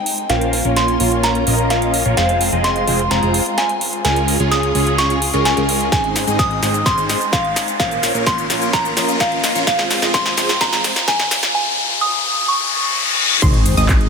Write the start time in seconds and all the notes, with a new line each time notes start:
Already playing: G#3 C4 D#4 G5, riser
0.06 open hi-hat
0.18 closed hi-hat
0.30 A#1 A#3 C#4 F4 A#4 C5 F5, snare, closed hi-hat
0.41 closed hi-hat
0.53 open hi-hat
0.65 A#1 A#3 C#4 F4 A#4 C#5
0.76 C6, snare, closed hi-hat
0.88 closed hi-hat
1.00 A#1 A#3 C#4 F4 A#4 C#5, open hi-hat
1.12 closed hi-hat
1.23 A#5, snare, closed hi-hat
1.35 closed hi-hat
1.47 A#1 A#3 C#4 F4 A#4 D#5, open hi-hat
1.59 closed hi-hat
1.70 F5, snare, closed hi-hat
1.82 closed hi-hat
1.94 open hi-hat
2.05 A#1 A#3 C#4 F4 A#4 C#5, closed hi-hat
2.17 F1 G#3 C4 F4 G#4 C5 F5, snare, closed hi-hat
2.29 closed hi-hat
2.41 open hi-hat
2.52 F1 G#3 C4 F4 G#4 D#5, closed hi-hat
2.64 C6, snare, closed hi-hat
2.76 closed hi-hat
2.87 F1 G#3 C4 F4 G#4 C5, open hi-hat
2.99 closed hi-hat
3.11 F1 G#3 C4 F4 G#4 C5 A#5, snare, closed hi-hat
3.23 F1 G#3 C4 F4 G#4 C5, closed hi-hat
3.34 open hi-hat
3.46 closed hi-hat
3.58 G#5, snare, closed hi-hat
3.69 closed hi-hat
3.81 open hi-hat
3.93 closed hi-hat
4.05 C#2 C#3 G#3 C#4 F4 G#4 A#4 G#5, snare, closed hi-hat
4.16 closed hi-hat
4.28 open hi-hat
4.40 C#2 G#3 C#4 F4 G#4 C#5, closed hi-hat
4.51 D#6, snare, closed hi-hat
4.63 closed hi-hat
4.75 C#2 G#3 C#4 F4 G#4 C#5, open hi-hat
4.87 closed hi-hat
4.98 C#6, snare, closed hi-hat
5.10 closed hi-hat
5.22 open hi-hat
5.33 C#2 G#3 C#4 F4 G#4 A#4, closed hi-hat
5.45 G#5, snare, closed hi-hat
5.57 C#2 G#3 C#4 F4 G#4 A#4, closed hi-hat
5.69 open hi-hat
5.81 closed hi-hat
5.92 G#1 G#3 C4 D#4 G#4 C5 G#5, kick, snare, closed hi-hat, shaker
6.04 closed hi-hat
6.16 snare, open hi-hat, shaker
6.27 G#1 G#3 C4 D#4 G#4 D#5, closed hi-hat, shaker
6.39 D#6, kick, snare, closed hi-hat, shaker
6.51 closed hi-hat
6.62 G#1 G#3 C4 D#4 G#4 C5, snare, open hi-hat, shaker
6.74 closed hi-hat, shaker
6.86 G#1 G#3 C4 D#4 G#4 C5 C6, kick, snare, closed hi-hat, shaker
6.98 G#1 G#3 C4 D#4 G#4 C5, closed hi-hat, shaker
7.09 snare, open hi-hat, shaker
7.21 closed hi-hat, shaker
7.33 F5, kick, snare, closed hi-hat, shaker
7.45 closed hi-hat
7.56 snare, open hi-hat, shaker
7.68 closed hi-hat, shaker
7.79 A#1 A#3 C#4 F4 A#4 C5 F5, kick, snare, closed hi-hat, shaker
7.91 closed hi-hat, shaker
8.03 snare, open hi-hat, shaker
8.15 A#1 A#3 C#4 F4 A#4 C#5, closed hi-hat, shaker
8.27 C6, kick, snare, closed hi-hat, shaker
8.38 closed hi-hat, shaker
8.50 A#1 A#3 C#4 F4 A#4 C#5, snare, open hi-hat, shaker
8.62 closed hi-hat, shaker
8.73 A#5, kick, snare, closed hi-hat, shaker
8.85 closed hi-hat, shaker
8.97 A#1 A#3 C#4 F4 A#4 D#5, snare, open hi-hat, shaker
9.09 closed hi-hat, shaker
9.20 F5, kick, snare, closed hi-hat, shaker
9.32 closed hi-hat
9.44 snare, open hi-hat, shaker
9.55 A#1 A#3 C#4 F4 A#4 C#5, closed hi-hat, shaker
9.67 F1 G#3 C4 F4 G#4 C5 F5, kick, snare, closed hi-hat, shaker
9.79 snare, closed hi-hat
9.91 snare, open hi-hat, shaker
10.02 F1 G#3 C4 F4 G#4 D#5, snare, closed hi-hat, shaker
10.14 C6, kick, snare, closed hi-hat, shaker
10.26 snare, closed hi-hat
10.37 F1 G#3 C4 F4 G#4 C5, snare, open hi-hat, shaker
10.49 snare, closed hi-hat, shaker
10.61 F1 G#3 C4 F4 G#4 C5 A#5, kick, snare, closed hi-hat, shaker
10.72 F1 G#3 C4 F4 G#4 C5, snare, closed hi-hat, shaker
10.84 snare, open hi-hat, shaker
10.96 snare, closed hi-hat, shaker
11.08 G#5, kick, snare, closed hi-hat, shaker
11.19 snare, closed hi-hat
11.31 snare, open hi-hat, shaker
11.43 snare, closed hi-hat, shaker
11.55 G#5
12.01 D#6
12.48 C#6, reverse cymbal
13.42 G#1 G#3 C4 D#4 G#4 C5 C6, kick, closed hi-hat, crash, sub drop, shaker
13.54 closed hi-hat
13.66 open hi-hat, shaker
13.77 G#1 G#3 C4 D#4 G#4 D#5 D#6, closed hi-hat, shaker
13.89 kick, clap, closed hi-hat, shaker
14.01 closed hi-hat